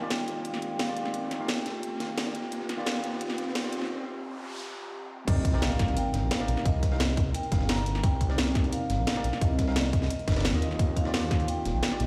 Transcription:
Already playing: D#2 C4 F4 G4, riser
0.01 D#3 A#3 F4 G4 D5
0.10 G5, snare, closed hi-hat
0.28 closed hi-hat
0.45 F5, closed hi-hat
0.54 snare
0.62 closed hi-hat
0.71 G5
0.79 F5, snare, closed hi-hat
0.87 D#3 A#3 F4 G4 D5 F5
0.96 A#1 G5, closed hi-hat
1.05 snare
1.14 D#2, closed hi-hat
1.31 snare, closed hi-hat
1.39 D#3 A#3 F4 G4 F5
1.48 snare, closed hi-hat
1.66 snare, closed hi-hat
1.83 closed hi-hat
2.00 A#1 D#3 A#3 F4 G4 F5, snare, closed hi-hat
2.18 snare, closed hi-hat
2.26 D#3 A#3 F4 G4 D5
2.35 A#1, closed hi-hat
2.52 D#2, closed hi-hat
2.69 snare, closed hi-hat
2.77 D#3 A#3 F4 G4 D5
2.86 snare, closed hi-hat
3.04 closed hi-hat
3.21 closed hi-hat
3.30 snare
3.38 closed hi-hat
3.47 A#1
3.55 snare, closed hi-hat
3.63 D#3 A#3 F4 G4 D5
3.73 closed hi-hat
3.81 snare
3.90 noise sweep
5.27 C2 C3 C4 D#4 A#4 D5 D#5, kick, closed hi-hat, crash, impact
5.45 kick, closed hi-hat
5.52 C3 C4 D#4 A#4 D5 G5, snare
5.62 F5, snare, closed hi-hat, open hi-hat
5.79 kick, snare, closed hi-hat
5.88 closed hi-hat
5.97 G5, closed hi-hat
6.14 G1, snare, closed hi-hat
6.22 A#1
6.31 F5, snare, closed hi-hat
6.39 C3 C4 D#4 A#4 D5, snare
6.48 A#1, closed hi-hat
6.57 snare
6.66 C2 D#5, kick, closed hi-hat
6.83 kick, snare, closed hi-hat
6.91 C3 C4 D#4 A#4 F5, snare
7.00 snare, closed hi-hat
7.17 kick, closed hi-hat
7.34 G5, closed hi-hat
7.43 closed hi-hat
7.51 G1 C3 C4 D#4 A#4 F5, kick, snare, closed hi-hat
7.61 snare
7.69 A#5, snare, closed hi-hat
7.77 C3 C4 D#4 A#4 D5, closed hi-hat
7.86 G1, closed hi-hat
7.95 snare
8.03 C2 G5, kick, closed hi-hat
8.21 kick, closed hi-hat
8.28 C3 C4 D#4 A#4 D5, snare
8.38 snare, closed hi-hat, open hi-hat
8.55 kick, snare, closed hi-hat
8.64 closed hi-hat
8.72 F5, closed hi-hat
8.90 G1, snare, closed hi-hat
8.98 A#1
9.07 snare, closed hi-hat
9.15 C3 C4 D#4 A#4 D5, snare
9.24 A#1, closed hi-hat
9.33 snare
9.41 C2 D#5, kick, closed hi-hat
9.59 kick, snare, closed hi-hat
9.67 C3 C4 D#4 A#4 F5, snare
9.76 D5, snare, closed hi-hat
9.93 D#5, kick, closed hi-hat
10.02 snare
10.10 closed hi-hat
10.19 closed hi-hat
10.28 G1, kick, snare, closed hi-hat, open hi-hat
10.32 C3, snare, open hi-hat
10.36 C4 D#4 A#4 D5, snare, open hi-hat
10.41 snare, open hi-hat
10.45 snare, closed hi-hat
10.52 D#2 D#3 A#3 F4 G4 D#5, closed hi-hat
10.62 F4 G4 D#5, closed hi-hat
10.71 snare
10.79 D#2, kick, closed hi-hat
10.96 F5, kick, closed hi-hat
11.04 D#3 A#3 F4 G4 D5, snare
11.14 snare, closed hi-hat, open hi-hat
11.31 kick, snare, closed hi-hat
11.40 closed hi-hat
11.48 G5, closed hi-hat
11.65 D#1, snare, closed hi-hat
11.74 A#1 G5
11.83 snare, closed hi-hat
11.90 D#3 A#3 F4 G4 D5, snare
12.00 A#1 D#5, closed hi-hat

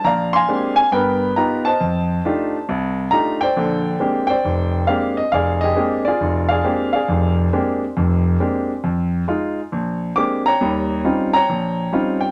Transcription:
0.04 A#1 D5 F5 A#5
0.33 F5 G#5 C6
0.48 G#3 A#3 C4 D4 G4
0.76 G#5
0.92 G2 B3 A#4 B4 G5
1.36 B3 D#4 F4 G4 A#5
1.65 C5 D#5 A5
1.81 F2
2.25 A3 D4 D#4 F4 G4
2.69 C2
3.11 A3 D4 D#4 F4 G4 A#5
3.41 C5 D5 G5
3.56 A#1 D3
4.00 G#3 A#3 C4 D4 G4
4.27 C5 D5 G5
4.45 F1
4.87 G#3 A#3 C4 D4 G4 F5
5.17 D#5
5.32 F1 G#4 D5 F5
5.61 G4 G#4 D#5
5.76 G#3 A#3 C4 D4 G4
6.05 F4 G#4 D5
6.21 F1
6.49 G#4 D5 F5
6.64 G#3 A#3 C4 D4 G4
6.93 G#4 D5 F5
7.08 F1 F2
7.53 G#3 A#3 C4 D4 G4
7.97 F1 F2
8.40 G#3 A#3 C4 D4 G4
8.84 F2
9.28 G#3 D#4 F4
9.72 A#1
10.16 G#3 A#3 C4 D4 G4 D6
10.46 C#5 G5 A#5
10.61 D#2 G3
11.05 G3 C4 C#4 D#4 F4
11.34 C#5 G5 A#5
11.49 A#1
11.92 G3 C4 C#4 D#4 F4
12.21 G5

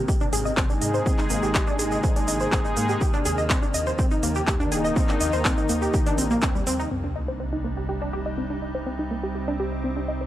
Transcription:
Already playing: C3 D#3 G#3 A#3 C4
0.08 G4, kick, shaker
0.21 D4, shaker
0.33 G#1 G#4, open hi-hat, shaker
0.45 D#5, shaker
0.57 G#1 C4, kick, clap, shaker
0.70 G#3 D4 D#4 G#4, shaker
0.82 G#2 D#5, open hi-hat, shaker
0.94 C5, shaker
1.06 C4, kick, shaker
1.19 D#4, clap, shaker
1.30 G#1 A#3, open hi-hat, shaker
1.43 G#1 G4, shaker
1.54 G4, kick, clap, shaker
1.67 D4, shaker
1.79 G#1 G#4, open hi-hat, shaker
1.91 D#5, shaker
2.03 C4, kick, shaker
2.16 D4, open hi-hat, shaker
2.28 G#1 D#5, open hi-hat, shaker
2.40 G#3 D#4 G#4 C5, shaker
2.52 G#1 C4, kick, clap, shaker
2.65 D#4, shaker
2.77 G#2 A#3, open hi-hat, shaker
2.89 G4, shaker
3.01 D#3 F3 G4, kick, shaker
3.13 D4, shaker
3.25 D#2 G#4, open hi-hat, shaker
3.38 D#2 D#5, shaker
3.50 C4, kick, clap, shaker
3.62 D4, shaker
3.74 D#2 D#5, open hi-hat, shaker
3.87 C5, shaker
3.99 C4, kick, shaker
4.11 D#4, shaker
4.23 D#2 A#3, open hi-hat, shaker
4.35 G4, shaker
4.47 D#2 G4, kick, clap, shaker
4.60 D#3 A#3 D4 D#4, shaker
4.72 D#1 G#4, open hi-hat, shaker
4.84 D#5, shaker
4.96 C4, kick, shaker
5.09 D4, clap, shaker
5.21 D#2 D#5, open hi-hat, shaker
5.33 D#2 C5, shaker
5.45 C4, kick, clap, shaker
5.57 D#4, shaker
5.69 D#2 A#3, open hi-hat, shaker
5.82 G4, shaker
5.94 G4, kick, shaker
6.06 D4, open hi-hat, shaker
6.18 A#1 C4, open hi-hat, shaker
6.31 A#3, shaker
6.42 D#2 C4, kick, clap, shaker
6.55 G3, shaker
6.67 D#2 C4, open hi-hat, shaker
6.79 D#4, shaker
6.91 C2 C3 G3 C4 D4 D#4, sub drop
7.04 D4
7.16 D#5
7.28 C5
7.40 C4
7.53 D#4
7.64 A#3
7.77 G4
7.89 G4
8.02 D4
8.13 G4
8.26 D#5
8.38 C4
8.50 D4
8.62 D#5
8.75 C5
8.86 C4
8.99 D#4
9.11 A#3
9.23 G4
9.35 G4
9.48 D4
9.60 G4
9.72 D#5
9.84 C4
9.97 D4
10.08 D#5
10.21 C5

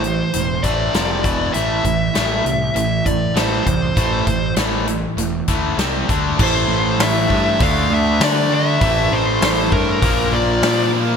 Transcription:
Already playing: A1 C5
0.03 A2 E3, closed hi-hat
0.33 E1 A2 E3, closed hi-hat
0.62 A1 A2 E3 A3 D5, kick, closed hi-hat
0.92 F1 F2 C3 F3, snare, closed hi-hat
1.23 E1 E2 B2 E3, kick, closed hi-hat
1.52 A1 A2 E3 A3 E5, closed hi-hat
1.84 A1 A2 E3, kick, closed hi-hat
2.14 A1 A2 E3 A3, snare, closed hi-hat
2.44 C2 A2 E3, closed hi-hat
2.74 A1 A2 E3 E5, closed hi-hat
3.04 A2 E3 D5, kick, closed hi-hat
3.34 A1 A2 E3 A3 C5, snare, closed hi-hat
3.64 C2 A2 E3 C5, kick, closed hi-hat
3.95 A1 A2 E3 A3, kick, closed hi-hat
4.26 A1 A2 E3, kick, closed hi-hat
4.56 A1 A2 E3 A3, snare, closed hi-hat
4.86 A2 E3, closed hi-hat
5.17 E1 A2 E3, closed hi-hat
5.48 D2 A2 E3 A3, kick, closed hi-hat
5.78 C2 C3 G3 C4, snare, closed hi-hat
6.08 D2 D3 A3 D4, kick, closed hi-hat
6.38 A1 A2 E3 A3 E4 A5, kick, crash
6.43 C5
6.68 A1
6.98 A1, snare, open hi-hat
7.02 E5
7.29 G2 A2 E3 A3, kick
7.59 D2 D3 A3 D4 D5, kick, open hi-hat
7.63 F5
7.90 D2 E5
8.20 D3 D5, snare, open hi-hat
8.50 D3 A3 D4
8.54 E5
8.80 A1 A2 E3 A3 C4 E4, kick, open hi-hat
9.11 A1 C5
9.42 A1, snare, open hi-hat
9.70 G2 A2 E3 A3 A#4, kick
10.01 A#1 A#2 F3 A#3 F4 C5, kick, open hi-hat
10.31 A#1 D5
10.62 A#2, snare, open hi-hat
10.92 A#2 F3 A#3

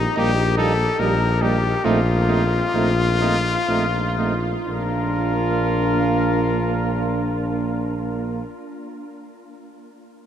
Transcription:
Already playing: D#4
0.16 A#1 G3 A#3 D#4 G4
0.57 G3 A#3 D#4 A4
0.98 A#1 G3 A#3 D#4 A#4
1.41 G3 A#3 D#4 G4
1.84 A#1 A3 C4 D#4 F4
2.28 A3 C4 D#4
2.74 A#1 A3 C4 D#4
3.20 A3 C4 D#4
3.68 A#1 A3 C4 D#4
4.17 A3 C4 D#4
4.68 A#1 A#3 D4 F4 A#4

